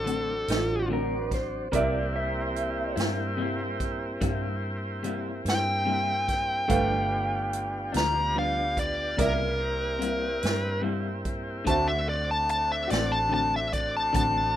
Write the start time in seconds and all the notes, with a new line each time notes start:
Already playing: A1 F#3 C4 D4 A4
0.05 D3 A3 C4 F#4, closed hi-hat
0.48 A1 F4, snare, closed hi-hat
0.88 D3 A3 C4 F#4
0.93 A#4
1.31 C5, kick, snare, closed hi-hat
1.72 C2 C3 G3 A#3 C4 E4 G4 A#4 D5 E5, kick, closed hi-hat
2.16 E5
2.56 closed hi-hat
2.96 G2 G3 A#3 E4, snare, closed hi-hat
3.37 C3 G3 A#3 E4
3.80 kick, closed hi-hat
4.21 G2 C3 G3 A#3 E4, kick, closed hi-hat
5.03 C3 G3 A#3 E4, closed hi-hat
5.45 G2, snare, closed hi-hat
5.50 G5
5.86 C3 G3 A#3 E4
6.28 kick, snare, closed hi-hat
6.68 G1 G2 F3 A3 B3 D4 F4 G4 B4 F5, kick, closed hi-hat
7.53 closed hi-hat
7.92 D2 F3 B3 D4, closed hi-hat
7.97 A#5, snare
8.34 G2 F3 B3 D4
8.39 F5
8.77 D5, kick, closed hi-hat
9.17 C2 C3 C#3 G3 A#3 B3 E4 F4 G#4 A#4 D5 E5, kick, closed hi-hat
9.21 snare
9.60 A#3 C4 E4 G4
9.99 C3 G3 A#3 E4, closed hi-hat
10.43 G2, snare, closed hi-hat
10.82 C3 G3 A#3 E4
11.25 kick, closed hi-hat
11.65 D2 D3 A3 C4 D4 F#4 C5 A5, kick, closed hi-hat
11.69 E5
11.88 E5
12.09 D5
12.31 A5
12.49 A5, closed hi-hat
12.72 E5
12.88 A1 A3 C4 F#4 D5, closed hi-hat
12.93 snare
13.12 A5
13.29 D3 A3 C4 F#4
13.34 A5
13.56 E5
13.73 D5, kick, closed hi-hat
13.97 A5
14.13 A1 D3 A3 C4 F#4 A5, kick, closed hi-hat